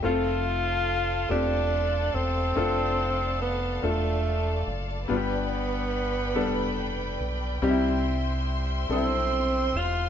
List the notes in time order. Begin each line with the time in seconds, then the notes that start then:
0.02 F1 A3 C4 F4 A4 C5 F5 A5
1.29 E1 A3 C4 D4 F4 G4
2.14 E1 C4
2.56 F1 A3 D4 F4 A4 D5
3.42 B3
3.82 E1 A3 D4 F4 A4
4.67 F#1
5.08 G1 G2 G3 B3 D4 F4 B4 G5 B5
5.16 G4
6.35 F1 G3 B3 D4 A4
7.20 B1
7.61 C2 C3 G3 C4 D#4 G4 C5 E5 C6
7.69 E4
8.89 B1 G3 C4 D4 A4
8.96 E4
9.74 E1 F4